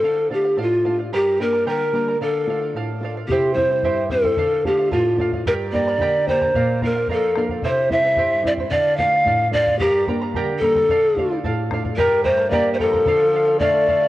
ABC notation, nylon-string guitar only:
X:1
M:2/4
L:1/8
Q:1/4=111
K:Dm
V:1 name="Nylon-string guitar"
D, [A,DF] A,, [A,DF] | G,, [G,B,D] D, [G,B,D] | D, [A,DF] A,, [A,DF] | C, [G,CE] G,, [G,CE] |
D, [A,DF] A,, [A,DF] | G,, [B,DG] D, [B,DG] | B,, [B,DF] F,, [B,DF] | C, [G,CE] G,, [G,CE] |
D, [A,DF] A,, [A,DF] | G,, [G,B,D] D, [G,B,D] | D, [A,DF] A,, [A,DF] | [K:Gdor] G,,2 [B,DG]2 |
D,2 [A,DF]2 |]